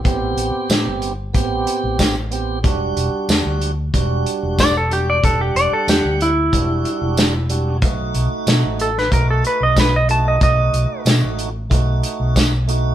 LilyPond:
<<
  \new Staff \with { instrumentName = "Electric slide guitar" } { \time 4/4 \key e \minor \tempo 4 = 93 e'8 r2. r8 | r2. d''16 a'16 g'16 d''16 | a'16 g'16 d''16 a'16 g'8 e'2~ e'8 | r4. a'16 b'16 ais'16 a'16 b'16 dis''16 b'16 dis''16 a''16 dis''16 |
dis''4 r2. | }
  \new Staff \with { instrumentName = "Tonewheel organ" } { \time 4/4 \key e \minor <b c' g'>4. r8 <b c' g'>4~ <b c' g'>16 r16 <b c' g'>8 | <g d' fis'>4. r8 <g d' fis'>4~ <g d' fis'>16 r16 <g d' fis'>8 | <g d' fis''>4. r8 <g d' fis'>4~ <g d' fis'>16 r16 <g d' fis'>8 | <a dis' fis'>4. r8 <a dis' fis'>4~ <a dis' fis'>16 r16 <a dis' fis'>8 |
<a dis' fis'>4. r8 <a dis' fis'>4~ <a dis' fis'>16 r16 <a dis' fis'>8 | }
  \new Staff \with { instrumentName = "Fingered electric bass" } { \clef bass \time 4/4 \key e \minor a,,8 a,,16 r16 a,16 g,,8. a,,8 r16 a,,4~ a,,16 | e,,8 e,,16 r16 e,16 d,8. e,,8 r16 e,,4~ e,,16 | e,,8 e,,16 r16 e,16 d,8. e,,8 r16 e,,4~ e,,16 | b,,8 b,,16 r16 b,16 a,,8. b,,8 r16 b,,4~ b,,16 |
b,,8 b,,16 r16 b,16 a,,8. b,,8 r16 b,,4~ b,,16 | }
  \new DrumStaff \with { instrumentName = "Drums" } \drummode { \time 4/4 <hh bd>8 hh8 <hh sn tamb>8 hh8 <hh bd>8 hh8 <hh bd sn tamb>8 hh8 | <hh bd>8 hh8 <hh sn tamb>8 hh8 <hh bd>8 hh8 <hh bd sn tamb>8 hh8 | <hh bd>8 hh8 <hh sn tamb>8 hh8 <hh bd>8 hh8 <hh sn tamb>8 hh8 | <hh bd>8 hh8 <hh sn tamb>8 hh16 sn16 <hh bd>8 hh8 <hh bd sn tamb>8 hh8 |
<hh bd>8 hh8 <hh sn tamb>8 hh8 <hh bd>8 hh8 <hh bd sn tamb>8 hh8 | }
>>